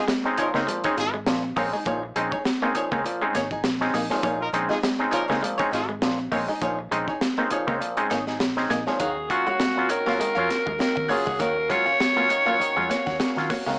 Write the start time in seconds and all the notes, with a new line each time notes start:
0.08 G#3, muted hollow-body jazz guitar stroke, snare, closed hi-hat
0.24 G#3 C4 C#4 D#4, muted clean electric guitar stroke, muted hollow-body jazz guitar stroke
0.38 A#2 F3 D#4 F4 G#4 A#4 C#5, muted fingered electric bass stroke, closed hi-hat
0.54 C#2 G#3 A#3 C4 C#4 D#4 G#4 C#5, snare
0.67 A#2 F3 G#3, muted hollow-body jazz guitar stroke, closed hi-hat
0.84 G#3 C4 C#4 D#4 G#4 C#5, kick, closed hi-hat
0.96 G#1 C#4 D#4 F4 G#4, muted hollow-body jazz guitar stroke, muted clean electric guitar stroke, snare, closed hi-hat
1.13 G#3, muted hollow-body jazz guitar stroke
1.26 A#1 A#2 F3, muted hollow-body jazz guitar stroke, muted clean electric guitar stroke, snare, closed hi-hat
1.43 muted hollow-body jazz guitar stroke
1.56 A#1 G#3 A#3 C4 C#4 D#4 G#4 C#5, kick, open hi-hat
1.72 G#3 C#4 D#4 G#4 D#5
1.85 A#1 A#2 F3 A#3 D#4 G#4 C#5, kick, closed hi-hat
2.03 muted clean electric guitar stroke
2.16 A#1 G#3 C4 C#4 D#4, muted hollow-body jazz guitar stroke, closed hi-hat
2.32 C#4 D#4 G#4 C#5, kick
2.44 muted hollow-body jazz guitar stroke, snare, closed hi-hat
2.62 G#3 A#3 C4 C#4 D#4, muted hollow-body jazz guitar stroke
2.75 A#2 F3 D#4 G#4 C#5, muted fingered electric bass stroke, muted clean electric guitar stroke, closed hi-hat
2.91 C#2 G#3 A#3 C4 C#4 D#4 G#4 C#5, kick
3.04 A#2 F3, muted clean electric guitar stroke, muted hollow-body jazz guitar stroke, closed hi-hat
3.21 G#3 C4 C#4 D#4, muted hollow-body jazz guitar stroke
3.35 G#1 A#3 C#4 D#4 G#4 C#5, snare, closed hi-hat
3.51 D#4 G#4 D#5, kick
3.64 A#1, muted hollow-body jazz guitar stroke, muted clean electric guitar stroke, snare, closed hi-hat
3.81 G#3 C4 C#4 D#4, muted hollow-body jazz guitar stroke, snare
3.94 A#1 A#3 D#4 G#4 D#5, snare, open hi-hat
4.10 A#2 F3 G#3 D#4 G#4 C#5, snare
4.23 A#1 A#2 F3 A#3 D#4 G#4 C#5, kick, closed hi-hat
4.41 D#4 F4 A#4
4.53 A#1 G#3 C4 C#4 D#4, muted hollow-body jazz guitar stroke, muted clean electric guitar stroke, closed hi-hat
4.69 G#3 C#4 D#4 F4 G#4 D#5, snare
4.82 G#3, muted hollow-body jazz guitar stroke, snare, closed hi-hat
4.99 G#3 C4 C#4 D#4, muted hollow-body jazz guitar stroke, muted clean electric guitar stroke
5.11 A#2 F3 D#4 F4 G#4 A#4 C#5, muted fingered electric bass stroke, closed hi-hat
5.28 C#2 G#3 A#3 C4 C#4 D#4 G#4 C#5, snare
5.41 A#2 F3 G#3, muted hollow-body jazz guitar stroke, closed hi-hat
5.58 G#3 C4 C#4 D#4 G#4 C#5, kick, closed hi-hat
5.71 G#1 C#4 D#4 F4 G#4, muted hollow-body jazz guitar stroke, muted clean electric guitar stroke, snare, closed hi-hat
5.89 G#3, muted hollow-body jazz guitar stroke
6.02 A#1 A#2 F3, muted clean electric guitar stroke, muted hollow-body jazz guitar stroke, snare, closed hi-hat
6.19 muted hollow-body jazz guitar stroke
6.32 A#1 G#3 A#3 C4 C#4 D#4 G#4 C#5, kick, open hi-hat
6.48 G#3 C#4 D#4 G#4 D#5
6.61 A#1 A#2 F3 A#3 D#4 G#4 C#5, kick, closed hi-hat
6.79 muted clean electric guitar stroke
6.91 A#1 G#3 C4 C#4 D#4, muted hollow-body jazz guitar stroke, closed hi-hat
7.08 C#4 D#4 G#4 C#5, kick
7.21 muted hollow-body jazz guitar stroke, snare, closed hi-hat
7.38 G#3 A#3 C4 C#4 D#4, muted hollow-body jazz guitar stroke
7.50 A#2 F3 D#4 G#4 C#5, muted fingered electric bass stroke, muted clean electric guitar stroke, closed hi-hat
7.67 C#2 G#3 A#3 C4 C#4 D#4 G#4 C#5, kick
7.80 A#2 F3, muted hollow-body jazz guitar stroke, muted clean electric guitar stroke, closed hi-hat
7.97 G#3 C4 C#4 D#4, muted hollow-body jazz guitar stroke, closed hi-hat
8.10 G#1 A#3 C#4 D#4 G#4 C#5, snare, closed hi-hat
8.27 D#4 G#4 D#5, snare
8.39 A#1, muted hollow-body jazz guitar stroke, muted clean electric guitar stroke, snare, closed hi-hat
8.56 G#3 C4 C#4 D#4, muted hollow-body jazz guitar stroke, snare
8.70 A#1 A#3 D#4 G#4 D#5, snare, closed hi-hat
8.87 A#2 F3 G#3 D#4 G#4 C#5, snare
9.00 D#2 D#3 A#3 C#4 F#4 G#4 C#5 F5, kick, closed hi-hat
9.30 F#3 C#4 F4 F#4, muted hollow-body jazz guitar stroke, muted clean electric guitar stroke, kick, closed hi-hat
9.47 G#3 C#4 F4 F#4 C#5 F#5, muted fingered electric bass stroke
9.60 G#3, muted hollow-body jazz guitar stroke, snare, closed hi-hat
9.75 F#3 C#4 F4, muted hollow-body jazz guitar stroke, muted clean electric guitar stroke
9.89 D#3 F#4 A#4 C#5 F5, closed hi-hat
10.06 F#3 A#3 C#4 F4 F#4 C#5 F5, snare
10.19 D#3 G#3, muted hollow-body jazz guitar stroke, muted fingered electric bass stroke, closed hi-hat
10.35 F2 F#3 C#4 F4 F#4 C#5 F5
10.49 C#4 F4, muted hollow-body jazz guitar stroke, muted clean electric guitar stroke, snare, closed hi-hat
10.66 D#2 G#3, muted hollow-body jazz guitar stroke, kick
10.79 D#3 A#4, muted hollow-body jazz guitar stroke, muted clean electric guitar stroke, snare, closed hi-hat
10.95 D#3, muted hollow-body jazz guitar stroke, kick
11.09 F#3 A#3 C#4 F4 F#4 G#4 C#5 F5, open hi-hat
11.26 C#2 G#3 C#4 F4 F#4 C#5 F#5, kick
11.39 D#2 D#3 A#3 F#4 A#4 C#5 F5, kick, closed hi-hat
11.56 muted clean electric guitar stroke
11.69 F#3 G#3 C#4 F4 C#5, muted hollow-body jazz guitar stroke, kick, closed hi-hat
11.86 C#4 F4 F#4 C#5 F5, muted fingered electric bass stroke
11.99 muted hollow-body jazz guitar stroke, snare, closed hi-hat
12.16 F#3 A#3 C#4 F4, muted hollow-body jazz guitar stroke
12.29 D#3 F#4 C#5 F5, muted clean electric guitar stroke, closed hi-hat
12.46 F#3 A#3 C#4 F4 F#4 C#5 F5
12.59 D#3, muted clean electric guitar stroke, muted hollow-body jazz guitar stroke, muted fingered electric bass stroke, closed hi-hat
12.76 F2 F#3 G#3 C#4 F4, muted hollow-body jazz guitar stroke
12.90 A#3 C#4 F4 F#4 C#5 F5, snare, closed hi-hat
13.06 D#2 F#4 C#5 F#5, kick, snare
13.20 muted clean electric guitar stroke, muted hollow-body jazz guitar stroke, snare, closed hi-hat
13.37 D#3 F#3 C#4 F4, muted hollow-body jazz guitar stroke, snare
13.50 A#3 F#4 C#5 F#5, kick, snare, open hi-hat
13.66 C#2 D#3 G#3 F#4 C#5 F5, snare